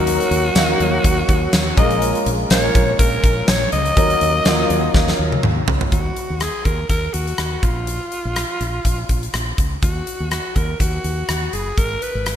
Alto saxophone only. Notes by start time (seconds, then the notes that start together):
Already playing: F#4
1.77 D#5
2.51 C#5
3.00 A#4
3.48 C#5
3.73 D#5
5.92 F#4
6.41 G#4
6.65 A#4
6.90 A#4
7.14 F#4
7.63 F4
9.83 F#4
10.31 F#4
10.56 A#4
10.80 F#4
11.53 G#4
11.78 A#4
12.02 B4